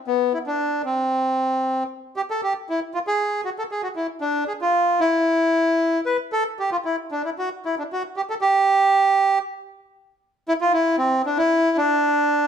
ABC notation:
X:1
M:4/4
L:1/16
Q:1/4=116
K:Ephr
V:1 name="Bandoneon"
B,2 E D3 C8 z2 | G A G2 E2 F ^G3 ^F A G F E2 | D2 ^G F3 E8 B2 | A2 G F E2 D E ^F2 E D F2 G A |
G8 z8 | E F E2 C2 D E3 D6 |]